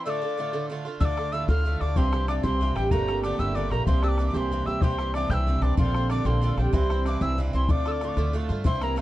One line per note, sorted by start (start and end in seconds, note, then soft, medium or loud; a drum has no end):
0.04 0.22 A2 medium
0.04 0.23 D3 medium
0.04 0.22 A3 medium
0.04 0.20 F4 medium
0.04 0.65 D5 loud
0.04 0.10 E6 medium
0.09 0.66 D6 medium
0.22 0.37 D3 soft
0.22 0.38 A3 soft
0.22 0.37 F4 medium
0.37 0.53 A2 medium
0.37 0.53 D3 medium
0.37 0.52 A3 medium
0.37 0.52 F4 medium
0.53 0.68 A2 medium
0.53 0.69 D3 medium
0.53 0.70 A3 medium
0.53 0.70 F4 medium
0.70 0.85 A2 medium
0.70 0.85 D3 medium
0.70 0.85 A3 medium
0.70 0.84 F4 medium
0.85 1.00 D3 soft
0.85 1.01 A3 soft
0.85 1.00 F4 medium
1.00 1.45 D2 medium
1.00 1.17 A2 medium
1.00 1.18 D3 medium
1.00 1.18 A3 medium
1.00 1.81 D4 medium
1.00 1.16 F4 medium
1.00 1.33 D5 loud
1.00 1.06 E6 loud
1.00 bodhran medium
1.05 1.34 D6 loud
1.17 1.32 D3 soft
1.17 1.33 A3 soft
1.17 1.33 F4 medium
1.17 bodhran medium
1.32 1.48 A2 medium
1.32 1.48 D3 medium
1.32 1.48 A3 medium
1.32 1.55 E4 medium
1.32 1.47 F4 medium
1.32 1.49 E5 medium
1.32 1.48 E6 loud
1.48 1.79 D2 loud
1.48 1.63 A2 medium
1.48 1.64 D3 medium
1.48 1.65 A3 medium
1.48 3.45 F4 medium
1.48 1.65 F4 medium
1.48 1.64 F5 medium
1.48 1.82 F6 loud
1.48 bodhran medium
1.64 1.80 A2 medium
1.64 1.81 D3 medium
1.64 1.81 A3 medium
1.64 1.80 F4 medium
1.64 1.81 E5 medium
1.64 bodhran soft
1.80 1.95 D2 medium
1.80 1.97 D3 soft
1.80 1.97 A3 soft
1.80 2.09 D4 medium
1.80 1.96 F4 soft
1.80 1.97 D5 medium
1.80 1.98 D6 medium
1.80 bodhran soft
1.95 2.41 C2 medium
1.95 2.13 G2 medium
1.95 2.13 E3 medium
1.95 2.13 C4 medium
1.95 2.11 G4 medium
1.95 2.29 C5 loud
1.95 2.28 C6 loud
1.95 bodhran medium
2.10 2.43 C4 medium
2.10 2.29 C4 soft
2.10 2.28 D4 medium
2.10 2.28 G4 medium
2.10 bodhran medium
2.15 2.28 E3 soft
2.28 2.44 G2 medium
2.28 2.43 E3 medium
2.28 2.43 C4 medium
2.28 3.23 D4 medium
2.28 2.42 G4 medium
2.28 2.45 D5 medium
2.28 2.34 D6 medium
2.28 bodhran medium
2.43 2.74 C2 loud
2.43 2.60 G2 medium
2.43 2.60 E3 medium
2.43 3.08 C4 medium
2.43 2.61 C4 medium
2.43 2.60 G4 medium
2.43 2.78 C5 medium
2.43 2.77 C6 loud
2.43 bodhran medium
2.61 2.76 G2 medium
2.61 2.76 E3 medium
2.61 2.76 C4 medium
2.61 2.75 G4 medium
2.61 bodhran soft
2.75 2.91 A1 medium
2.75 2.91 E3 soft
2.75 2.96 G3 medium
2.75 2.92 C4 soft
2.75 2.91 G4 medium
2.75 2.93 G5 medium
2.75 bodhran medium
2.91 3.36 G1 medium
2.91 3.08 A#2 medium
2.91 3.08 D3 medium
2.91 3.08 A3 medium
2.91 3.70 A#3 medium
2.91 3.07 G4 medium
2.91 3.04 A#4 loud
2.91 3.22 A#5 loud
2.91 bodhran medium
3.02 3.15 C5 medium
3.08 3.23 D3 soft
3.08 3.24 A3 medium
3.08 3.86 C4 medium
3.08 3.23 G4 medium
3.08 bodhran medium
3.13 3.23 A#4 medium
3.23 3.39 A#2 medium
3.23 3.39 D3 medium
3.23 3.39 A3 medium
3.23 4.02 D4 medium
3.23 3.38 G4 medium
3.23 3.38 D5 medium
3.23 3.41 D6 loud
3.23 bodhran medium
3.38 3.69 G1 loud
3.38 3.54 A#2 medium
3.38 3.55 D3 medium
3.38 3.56 A3 medium
3.38 4.66 E4 loud
3.38 3.56 G4 medium
3.38 3.56 E5 loud
3.38 3.57 E6 loud
3.38 bodhran medium
3.55 3.71 A#2 medium
3.55 3.71 D3 medium
3.55 3.71 A3 medium
3.55 3.70 G4 medium
3.55 3.69 D5 medium
3.55 3.72 D6 medium
3.55 bodhran soft
3.70 3.86 A#1 medium
3.70 3.87 D3 soft
3.70 3.87 A3 medium
3.70 7.99 A#3 medium
3.70 3.87 G4 soft
3.70 3.84 A#4 medium
3.70 3.86 A#5 medium
3.70 bodhran medium
3.85 4.32 C2 medium
3.85 4.03 G2 medium
3.85 4.04 E3 medium
3.85 4.33 C4 medium
3.85 4.03 C4 medium
3.85 4.02 G4 medium
3.85 4.03 C5 loud
3.85 4.05 C6 loud
3.85 bodhran medium
4.02 4.19 C4 medium
4.02 5.14 D4 medium
4.02 4.19 G4 medium
4.02 4.27 D5 medium
4.02 4.09 E6 medium
4.02 bodhran medium
4.06 4.19 E3 soft
4.06 4.27 D6 loud
4.18 4.34 G2 medium
4.18 4.34 E3 medium
4.18 4.34 C4 medium
4.18 4.33 G4 medium
4.18 bodhran medium
4.27 4.34 D6 medium
4.33 4.65 C2 loud
4.33 4.50 G2 medium
4.33 4.51 E3 medium
4.33 4.81 C4 medium
4.33 4.51 C4 medium
4.33 4.51 G4 medium
4.33 4.67 C5 medium
4.33 4.38 D6 medium
4.33 bodhran medium
4.38 4.68 C6 medium
4.51 4.67 G2 medium
4.51 4.67 E3 medium
4.51 4.67 C4 medium
4.51 4.66 G4 medium
4.51 bodhran soft
4.65 4.81 C2 medium
4.65 4.83 C4 soft
4.65 5.28 E4 medium
4.65 4.82 G4 medium
4.65 4.82 E5 medium
4.65 4.84 E6 medium
4.69 4.82 E3 soft
4.81 5.27 C2 medium
4.81 4.99 G2 medium
4.81 4.99 E3 medium
4.81 5.77 C4 medium
4.81 4.99 C4 medium
4.81 4.98 G4 medium
4.81 5.15 C5 loud
4.81 5.14 C6 loud
4.81 bodhran loud
4.99 5.15 E3 soft
4.99 5.15 C4 soft
4.99 5.14 G4 medium
4.99 bodhran medium
5.14 5.30 G2 medium
5.14 5.31 E3 medium
5.14 5.31 C4 medium
5.14 5.61 D4 medium
5.14 5.30 G4 medium
5.14 5.32 D5 medium
5.14 5.32 D6 loud
5.14 bodhran medium
5.29 5.60 C2 loud
5.29 5.47 E3 medium
5.29 5.47 C4 medium
5.29 7.21 E4 medium
5.29 5.47 G4 medium
5.29 5.63 E5 medium
5.29 5.35 G6 medium
5.29 bodhran medium
5.33 5.46 G2 medium
5.33 5.58 E6 medium
5.47 5.62 G2 medium
5.47 5.63 E3 medium
5.47 5.62 C4 medium
5.47 5.61 G4 medium
5.47 bodhran soft
5.58 5.76 C2 medium
5.58 6.09 D4 medium
5.58 5.77 G4 medium
5.58 5.77 D5 medium
5.58 5.77 D6 medium
5.58 5.64 E6 medium
5.58 bodhran medium
5.63 5.78 E3 soft
5.63 5.77 C4 medium
5.77 6.23 A#1 medium
5.77 5.94 A#2 medium
5.77 5.95 D3 medium
5.77 5.94 C4 medium
5.77 5.95 C4 medium
5.77 5.93 F4 medium
5.77 6.12 C5 medium
5.77 6.08 C6 loud
5.77 bodhran loud
5.94 6.10 D3 soft
5.94 6.24 C4 medium
5.94 6.10 C4 medium
5.94 6.10 F4 soft
5.94 bodhran medium
6.10 6.25 A#2 medium
6.10 6.25 D3 medium
6.10 6.25 C4 medium
6.10 7.05 D4 medium
6.10 6.24 F4 medium
6.10 6.28 D5 medium
6.10 6.28 D6 loud
6.10 bodhran medium
6.25 6.56 A#1 loud
6.25 6.40 A#2 medium
6.25 6.41 D3 medium
6.25 6.73 C4 medium
6.25 6.42 C4 medium
6.25 6.42 F4 medium
6.25 6.42 C5 medium
6.25 6.60 C6 medium
6.25 bodhran medium
6.41 6.57 A#2 medium
6.41 6.58 D3 medium
6.41 6.58 C4 medium
6.41 6.56 F4 medium
6.41 6.57 A4 medium
6.41 bodhran soft
6.57 6.72 A#1 medium
6.57 6.73 D3 soft
6.57 6.78 G3 medium
6.57 6.73 C4 medium
6.57 6.73 F4 soft
6.57 6.76 G4 medium
6.57 6.75 G5 medium
6.57 bodhran medium
6.73 7.18 C2 medium
6.73 6.90 G2 medium
6.73 6.90 E3 medium
6.73 6.89 C4 medium
6.73 6.90 C4 medium
6.73 6.89 E4 medium
6.73 7.23 C5 loud
6.73 7.06 C6 loud
6.73 bodhran medium
6.90 7.05 E3 soft
6.90 7.53 C4 medium
6.90 7.06 C4 medium
6.90 7.05 E4 medium
6.90 bodhran medium
7.06 7.21 G2 medium
7.06 7.22 E3 medium
7.06 7.21 C4 medium
7.06 7.68 D4 medium
7.06 7.20 E4 medium
7.06 7.23 D6 medium
7.06 bodhran medium
7.21 7.52 C2 loud
7.21 7.37 G2 medium
7.21 7.37 E3 medium
7.21 7.38 C4 medium
7.21 7.38 E4 medium
7.21 9.01 E4 medium
7.21 7.38 E5 medium
7.21 7.38 E6 loud
7.21 bodhran medium
7.38 7.53 G2 medium
7.38 7.54 E3 medium
7.38 7.53 C4 medium
7.38 7.52 E4 medium
7.38 bodhran soft
7.53 7.68 C2 medium
7.53 7.69 E3 soft
7.53 8.64 C4 medium
7.53 7.69 C4 soft
7.53 7.69 E4 medium
7.53 7.72 C6 medium
7.68 8.15 D2 medium
7.68 7.86 A2 medium
7.68 7.86 D3 medium
7.68 7.86 A3 medium
7.68 9.01 D4 medium
7.68 7.84 F4 medium
7.68 8.30 D5 loud
7.68 7.89 D6 medium
7.68 bodhran loud
7.85 8.01 D3 soft
7.85 8.02 A3 soft
7.85 8.01 F4 medium
7.85 7.92 E6 medium
7.85 bodhran medium
7.91 8.06 D6 medium
8.01 8.17 A2 medium
8.01 8.17 D3 medium
8.01 8.17 A3 medium
8.01 8.16 F4 medium
8.01 8.09 C6 medium
8.01 bodhran medium
8.08 8.35 D6 medium
8.17 8.48 D2 loud
8.17 8.32 A2 medium
8.17 8.33 D3 medium
8.17 8.33 A3 medium
8.17 8.34 F4 medium
8.17 bodhran medium
8.33 8.49 A2 medium
8.33 8.49 D3 medium
8.33 8.49 A3 medium
8.33 8.48 F4 medium
8.33 bodhran soft
8.49 8.64 G2 medium
8.49 8.65 D3 soft
8.49 8.65 A3 soft
8.49 8.65 F4 medium
8.64 9.01 C2 medium
8.64 8.81 G2 medium
8.64 8.82 E3 medium
8.64 8.96 C4 medium
8.64 8.82 C4 medium
8.64 8.80 E4 medium
8.64 8.84 C5 medium
8.64 8.85 C6 medium
8.64 bodhran medium
8.73 bodhran soft
8.81 8.96 E3 medium
8.81 9.01 A#3 medium
8.81 8.97 C4 soft
8.81 8.97 E4 medium
8.81 8.99 A#4 medium
8.81 8.98 A#5 medium
8.81 bodhran medium
8.96 9.01 G2 medium
8.96 9.01 E3 medium
8.96 9.01 C4 medium
8.96 9.01 C5 medium
8.96 bodhran medium